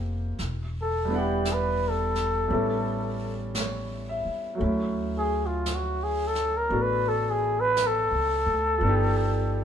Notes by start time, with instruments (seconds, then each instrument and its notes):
Already playing: upright bass F1, grand piano F3 A#3 C4 G4 A4 D5
0.39 upright bass E1, brush sweep, snare
0.82 muted trumpet A4
1.05 grand piano G3 B3
1.10 grand piano D4 E4
1.15 muted trumpet G4, grand piano F#5
1.45 brush sweep, snare, hi-hat pedal
1.53 muted trumpet B4
1.90 muted trumpet A4
2.15 snare
2.48 upright bass A1, grand piano G3 B3 C#4 E4, brush sweep
2.53 grand piano A4
3.55 grand piano C#5, brush sweep, snare, hi-hat pedal
4.09 grand piano E5
4.25 muted upright bass stroke
4.55 grand piano F#3 A3
4.60 upright bass D2, grand piano C#4 E4, brush sweep
5.18 muted trumpet G#4
5.46 muted trumpet F4
5.66 brush sweep, snare, hi-hat pedal
5.75 muted trumpet F#4
6.03 muted trumpet G#4
6.27 muted trumpet A4
6.35 snare
6.57 muted trumpet A#4
6.69 upright bass A1, grand piano B3 D4 F#4, brush sweep
6.73 grand piano A4
6.82 muted trumpet B4
7.08 muted trumpet A4
7.30 muted trumpet G#4
7.60 muted trumpet B4
7.77 brush sweep, snare, hi-hat pedal
7.87 muted trumpet A4
8.11 upright bass C#2
8.46 upright bass D2
8.78 upright bass G1, grand piano F3 B3
8.82 grand piano D4, brush sweep
8.86 grand piano D#4 G4